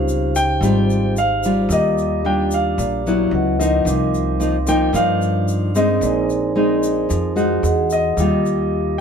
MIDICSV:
0, 0, Header, 1, 6, 480
1, 0, Start_track
1, 0, Key_signature, -3, "major"
1, 0, Tempo, 539568
1, 1516, Time_signature, 4, 2, 24, 8
1, 8012, End_track
2, 0, Start_track
2, 0, Title_t, "Grand piano"
2, 0, Program_c, 0, 0
2, 0, Note_on_c, 0, 77, 91
2, 319, Note_on_c, 0, 79, 107
2, 347, Note_off_c, 0, 77, 0
2, 1002, Note_off_c, 0, 79, 0
2, 1052, Note_on_c, 0, 77, 89
2, 1535, Note_on_c, 0, 75, 82
2, 1538, Note_off_c, 0, 77, 0
2, 2011, Note_on_c, 0, 79, 82
2, 2020, Note_off_c, 0, 75, 0
2, 2251, Note_off_c, 0, 79, 0
2, 2260, Note_on_c, 0, 77, 73
2, 2933, Note_off_c, 0, 77, 0
2, 3198, Note_on_c, 0, 75, 72
2, 4169, Note_on_c, 0, 79, 94
2, 4186, Note_off_c, 0, 75, 0
2, 4410, Note_off_c, 0, 79, 0
2, 4410, Note_on_c, 0, 77, 86
2, 5130, Note_on_c, 0, 75, 80
2, 5145, Note_off_c, 0, 77, 0
2, 5570, Note_off_c, 0, 75, 0
2, 7051, Note_on_c, 0, 75, 83
2, 8012, Note_off_c, 0, 75, 0
2, 8012, End_track
3, 0, Start_track
3, 0, Title_t, "Vibraphone"
3, 0, Program_c, 1, 11
3, 0, Control_c, 1, 64, 127
3, 0, Note_on_c, 1, 63, 54
3, 0, Note_on_c, 1, 67, 47
3, 0, Note_on_c, 1, 72, 49
3, 0, Note_on_c, 1, 77, 59
3, 1459, Note_off_c, 1, 63, 0
3, 1467, Note_off_c, 1, 67, 0
3, 1478, Note_off_c, 1, 72, 0
3, 1486, Note_off_c, 1, 77, 0
3, 1515, Note_on_c, 1, 67, 44
3, 1528, Control_c, 1, 64, 0
3, 1533, Note_on_c, 1, 86, 47
3, 1554, Note_on_c, 1, 77, 54
3, 1667, Control_c, 1, 64, 127
3, 2928, Note_off_c, 1, 67, 0
3, 2937, Note_off_c, 1, 86, 0
3, 2947, Note_off_c, 1, 77, 0
3, 2957, Note_on_c, 1, 71, 47
3, 2966, Control_c, 1, 64, 0
3, 2966, Note_on_c, 1, 75, 48
3, 2975, Note_on_c, 1, 78, 61
3, 3133, Control_c, 1, 64, 127
3, 3410, Note_on_c, 1, 63, 50
3, 3430, Note_on_c, 1, 70, 43
3, 3437, Note_off_c, 1, 71, 0
3, 3441, Note_off_c, 1, 75, 0
3, 3446, Note_off_c, 1, 78, 0
3, 3449, Control_c, 1, 64, 0
3, 3449, Note_on_c, 1, 86, 44
3, 3467, Note_on_c, 1, 77, 52
3, 3597, Control_c, 1, 64, 127
3, 5308, Note_off_c, 1, 63, 0
3, 5318, Note_off_c, 1, 70, 0
3, 5327, Note_off_c, 1, 86, 0
3, 5329, Note_on_c, 1, 63, 52
3, 5337, Note_off_c, 1, 77, 0
3, 5350, Note_on_c, 1, 70, 42
3, 5366, Note_on_c, 1, 72, 45
3, 5367, Control_c, 1, 64, 0
3, 5387, Note_on_c, 1, 80, 54
3, 5510, Control_c, 1, 64, 127
3, 6753, Note_off_c, 1, 63, 0
3, 6764, Note_off_c, 1, 70, 0
3, 6772, Note_off_c, 1, 72, 0
3, 6782, Note_off_c, 1, 80, 0
3, 6782, Note_on_c, 1, 68, 51
3, 6797, Note_on_c, 1, 75, 50
3, 6805, Note_on_c, 1, 78, 62
3, 6806, Control_c, 1, 64, 0
3, 6973, Control_c, 1, 64, 127
3, 7264, Note_on_c, 1, 67, 47
3, 7269, Note_off_c, 1, 68, 0
3, 7276, Note_off_c, 1, 75, 0
3, 7280, Note_off_c, 1, 78, 0
3, 7280, Note_on_c, 1, 86, 45
3, 7288, Control_c, 1, 64, 0
3, 7295, Note_on_c, 1, 77, 54
3, 7431, Control_c, 1, 64, 127
3, 8012, Note_off_c, 1, 67, 0
3, 8012, Note_off_c, 1, 77, 0
3, 8012, Note_off_c, 1, 86, 0
3, 8012, End_track
4, 0, Start_track
4, 0, Title_t, "Nylon-string guitar"
4, 0, Program_c, 2, 24
4, 0, Note_on_c, 2, 49, 53
4, 0, Note_on_c, 2, 55, 61
4, 0, Note_on_c, 2, 60, 63
4, 0, Note_on_c, 2, 65, 71
4, 280, Note_off_c, 2, 55, 0
4, 283, Note_off_c, 2, 60, 0
4, 285, Note_off_c, 2, 65, 0
4, 529, Note_off_c, 2, 49, 0
4, 551, Note_on_c, 2, 44, 54
4, 551, Note_on_c, 2, 55, 52
4, 554, Note_on_c, 2, 60, 52
4, 562, Note_on_c, 2, 65, 63
4, 1030, Note_off_c, 2, 55, 0
4, 1032, Note_off_c, 2, 60, 0
4, 1036, Note_off_c, 2, 65, 0
4, 1291, Note_on_c, 2, 55, 61
4, 1297, Note_on_c, 2, 65, 68
4, 1490, Note_off_c, 2, 44, 0
4, 1515, Note_on_c, 2, 51, 54
4, 1965, Note_off_c, 2, 55, 0
4, 1968, Note_off_c, 2, 65, 0
4, 1997, Note_on_c, 2, 55, 53
4, 2001, Note_on_c, 2, 62, 54
4, 2009, Note_on_c, 2, 65, 59
4, 2452, Note_off_c, 2, 51, 0
4, 2478, Note_on_c, 2, 46, 52
4, 2679, Note_off_c, 2, 55, 0
4, 2680, Note_off_c, 2, 62, 0
4, 2685, Note_off_c, 2, 65, 0
4, 2728, Note_on_c, 2, 54, 60
4, 2733, Note_on_c, 2, 59, 54
4, 2740, Note_on_c, 2, 64, 58
4, 2933, Note_off_c, 2, 46, 0
4, 3164, Note_off_c, 2, 54, 0
4, 3166, Note_off_c, 2, 59, 0
4, 3170, Note_off_c, 2, 64, 0
4, 3199, Note_on_c, 2, 53, 54
4, 3205, Note_on_c, 2, 58, 58
4, 3210, Note_on_c, 2, 63, 62
4, 3431, Note_on_c, 2, 48, 53
4, 3901, Note_off_c, 2, 53, 0
4, 3908, Note_off_c, 2, 58, 0
4, 3911, Note_off_c, 2, 63, 0
4, 3912, Note_on_c, 2, 53, 57
4, 3918, Note_on_c, 2, 58, 47
4, 3923, Note_on_c, 2, 63, 58
4, 4055, Note_off_c, 2, 53, 0
4, 4059, Note_off_c, 2, 58, 0
4, 4060, Note_off_c, 2, 63, 0
4, 4150, Note_on_c, 2, 53, 57
4, 4158, Note_on_c, 2, 58, 56
4, 4166, Note_on_c, 2, 63, 66
4, 4355, Note_off_c, 2, 53, 0
4, 4359, Note_off_c, 2, 58, 0
4, 4363, Note_off_c, 2, 63, 0
4, 4370, Note_off_c, 2, 48, 0
4, 4392, Note_on_c, 2, 43, 51
4, 4392, Note_on_c, 2, 53, 55
4, 4393, Note_on_c, 2, 58, 51
4, 4399, Note_on_c, 2, 63, 59
4, 5075, Note_off_c, 2, 58, 0
4, 5076, Note_off_c, 2, 53, 0
4, 5079, Note_off_c, 2, 63, 0
4, 5116, Note_on_c, 2, 56, 62
4, 5120, Note_on_c, 2, 60, 64
4, 5123, Note_on_c, 2, 63, 62
4, 5331, Note_off_c, 2, 43, 0
4, 5352, Note_on_c, 2, 46, 56
4, 5799, Note_off_c, 2, 56, 0
4, 5799, Note_off_c, 2, 60, 0
4, 5800, Note_off_c, 2, 63, 0
4, 5831, Note_on_c, 2, 56, 56
4, 5838, Note_on_c, 2, 60, 53
4, 5842, Note_on_c, 2, 63, 59
4, 6290, Note_off_c, 2, 46, 0
4, 6306, Note_on_c, 2, 53, 52
4, 6515, Note_off_c, 2, 56, 0
4, 6519, Note_off_c, 2, 60, 0
4, 6519, Note_off_c, 2, 63, 0
4, 6545, Note_on_c, 2, 56, 53
4, 6550, Note_on_c, 2, 63, 60
4, 6553, Note_on_c, 2, 66, 67
4, 6767, Note_off_c, 2, 53, 0
4, 7232, Note_off_c, 2, 56, 0
4, 7234, Note_off_c, 2, 63, 0
4, 7236, Note_off_c, 2, 66, 0
4, 7280, Note_on_c, 2, 51, 51
4, 7287, Note_on_c, 2, 55, 56
4, 7295, Note_on_c, 2, 65, 64
4, 8012, Note_off_c, 2, 51, 0
4, 8012, Note_off_c, 2, 55, 0
4, 8012, Note_off_c, 2, 65, 0
4, 8012, End_track
5, 0, Start_track
5, 0, Title_t, "Upright bass"
5, 0, Program_c, 3, 32
5, 0, Note_on_c, 3, 37, 91
5, 511, Note_off_c, 3, 37, 0
5, 539, Note_on_c, 3, 32, 95
5, 1472, Note_off_c, 3, 32, 0
5, 1501, Note_on_c, 3, 39, 90
5, 2433, Note_off_c, 3, 39, 0
5, 2472, Note_on_c, 3, 34, 91
5, 2921, Note_off_c, 3, 34, 0
5, 2947, Note_on_c, 3, 37, 92
5, 3398, Note_off_c, 3, 37, 0
5, 3425, Note_on_c, 3, 36, 90
5, 4355, Note_off_c, 3, 36, 0
5, 4383, Note_on_c, 3, 43, 93
5, 5314, Note_off_c, 3, 43, 0
5, 5347, Note_on_c, 3, 34, 92
5, 6276, Note_off_c, 3, 34, 0
5, 6318, Note_on_c, 3, 41, 97
5, 6763, Note_off_c, 3, 41, 0
5, 6788, Note_on_c, 3, 40, 93
5, 7238, Note_off_c, 3, 40, 0
5, 7267, Note_on_c, 3, 39, 90
5, 8012, Note_off_c, 3, 39, 0
5, 8012, End_track
6, 0, Start_track
6, 0, Title_t, "Drums"
6, 74, Note_on_c, 9, 82, 50
6, 163, Note_off_c, 9, 82, 0
6, 316, Note_on_c, 9, 82, 63
6, 405, Note_off_c, 9, 82, 0
6, 559, Note_on_c, 9, 82, 58
6, 648, Note_off_c, 9, 82, 0
6, 800, Note_on_c, 9, 82, 26
6, 889, Note_off_c, 9, 82, 0
6, 1037, Note_on_c, 9, 82, 54
6, 1126, Note_off_c, 9, 82, 0
6, 1275, Note_on_c, 9, 82, 59
6, 1364, Note_off_c, 9, 82, 0
6, 1515, Note_on_c, 9, 82, 57
6, 1604, Note_off_c, 9, 82, 0
6, 1761, Note_on_c, 9, 82, 25
6, 1850, Note_off_c, 9, 82, 0
6, 2234, Note_on_c, 9, 82, 59
6, 2323, Note_off_c, 9, 82, 0
6, 2480, Note_on_c, 9, 82, 61
6, 2569, Note_off_c, 9, 82, 0
6, 2729, Note_on_c, 9, 82, 25
6, 2818, Note_off_c, 9, 82, 0
6, 3211, Note_on_c, 9, 82, 57
6, 3300, Note_off_c, 9, 82, 0
6, 3442, Note_on_c, 9, 82, 62
6, 3531, Note_off_c, 9, 82, 0
6, 3686, Note_on_c, 9, 82, 27
6, 3775, Note_off_c, 9, 82, 0
6, 3920, Note_on_c, 9, 82, 48
6, 4009, Note_off_c, 9, 82, 0
6, 4155, Note_on_c, 9, 82, 60
6, 4244, Note_off_c, 9, 82, 0
6, 4397, Note_on_c, 9, 82, 58
6, 4486, Note_off_c, 9, 82, 0
6, 4640, Note_on_c, 9, 82, 25
6, 4729, Note_off_c, 9, 82, 0
6, 4876, Note_on_c, 9, 82, 52
6, 4965, Note_off_c, 9, 82, 0
6, 5118, Note_on_c, 9, 82, 63
6, 5207, Note_off_c, 9, 82, 0
6, 5355, Note_on_c, 9, 82, 62
6, 5444, Note_off_c, 9, 82, 0
6, 5601, Note_on_c, 9, 82, 26
6, 5690, Note_off_c, 9, 82, 0
6, 6078, Note_on_c, 9, 82, 63
6, 6167, Note_off_c, 9, 82, 0
6, 6319, Note_on_c, 9, 82, 61
6, 6408, Note_off_c, 9, 82, 0
6, 6557, Note_on_c, 9, 82, 26
6, 6646, Note_off_c, 9, 82, 0
6, 6798, Note_on_c, 9, 82, 53
6, 6887, Note_off_c, 9, 82, 0
6, 7030, Note_on_c, 9, 82, 59
6, 7119, Note_off_c, 9, 82, 0
6, 7276, Note_on_c, 9, 82, 60
6, 7365, Note_off_c, 9, 82, 0
6, 7523, Note_on_c, 9, 82, 24
6, 7612, Note_off_c, 9, 82, 0
6, 8012, End_track
0, 0, End_of_file